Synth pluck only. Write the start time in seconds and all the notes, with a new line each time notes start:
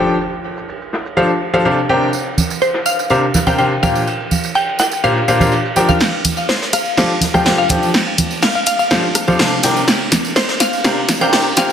2.62 C5
2.86 F5
3.47 G5
3.58 G5
3.83 F5
4.55 G5
4.80 G5
5.04 F5
5.89 F5
6.49 C5
6.73 F5
7.34 G5
7.46 G5
7.58 F5
8.43 F5
8.55 F5
8.67 F5
8.79 F5
10.36 C5
10.60 F5
11.21 G5
11.33 G5
11.57 F5